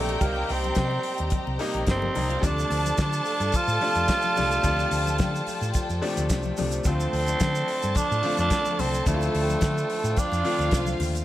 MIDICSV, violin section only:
0, 0, Header, 1, 2, 480
1, 0, Start_track
1, 0, Tempo, 553506
1, 186, Time_signature, 4, 2, 24, 8
1, 9754, End_track
2, 0, Start_track
2, 0, Title_t, "Violin section"
2, 0, Program_c, 0, 48
2, 0, Note_on_c, 0, 67, 80
2, 0, Note_on_c, 0, 79, 95
2, 1601, Note_off_c, 0, 79, 0
2, 1602, Note_off_c, 0, 67, 0
2, 1687, Note_on_c, 0, 69, 68
2, 1691, Note_on_c, 0, 57, 59
2, 1746, Note_on_c, 0, 58, 56
2, 1750, Note_on_c, 0, 70, 67
2, 1753, Note_off_c, 0, 69, 0
2, 1755, Note_off_c, 0, 57, 0
2, 1799, Note_on_c, 0, 60, 60
2, 1804, Note_on_c, 0, 72, 76
2, 1807, Note_off_c, 0, 58, 0
2, 1809, Note_off_c, 0, 70, 0
2, 1852, Note_on_c, 0, 74, 73
2, 1855, Note_on_c, 0, 62, 74
2, 1862, Note_off_c, 0, 60, 0
2, 1864, Note_off_c, 0, 72, 0
2, 1915, Note_on_c, 0, 75, 83
2, 1917, Note_on_c, 0, 63, 76
2, 1924, Note_off_c, 0, 74, 0
2, 1925, Note_off_c, 0, 62, 0
2, 1986, Note_on_c, 0, 65, 77
2, 1987, Note_off_c, 0, 75, 0
2, 1988, Note_off_c, 0, 63, 0
2, 1988, Note_on_c, 0, 77, 89
2, 2045, Note_on_c, 0, 67, 75
2, 2047, Note_off_c, 0, 65, 0
2, 2048, Note_off_c, 0, 77, 0
2, 2048, Note_on_c, 0, 79, 91
2, 2100, Note_on_c, 0, 69, 98
2, 2102, Note_on_c, 0, 81, 111
2, 2105, Note_off_c, 0, 67, 0
2, 2107, Note_off_c, 0, 79, 0
2, 5669, Note_off_c, 0, 69, 0
2, 5671, Note_off_c, 0, 81, 0
2, 5947, Note_on_c, 0, 69, 81
2, 5949, Note_on_c, 0, 81, 87
2, 8790, Note_off_c, 0, 69, 0
2, 8791, Note_off_c, 0, 81, 0
2, 8814, Note_on_c, 0, 65, 82
2, 8814, Note_on_c, 0, 77, 85
2, 9754, Note_off_c, 0, 65, 0
2, 9754, Note_off_c, 0, 77, 0
2, 9754, End_track
0, 0, End_of_file